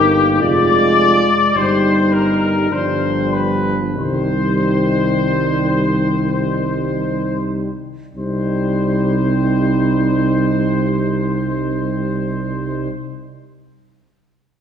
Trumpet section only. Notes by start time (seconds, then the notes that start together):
Already playing: G4
0.41 D5
1.55 C5
2.12 A#4
2.71 C5
3.32 B4
3.97 C5
8.16 C5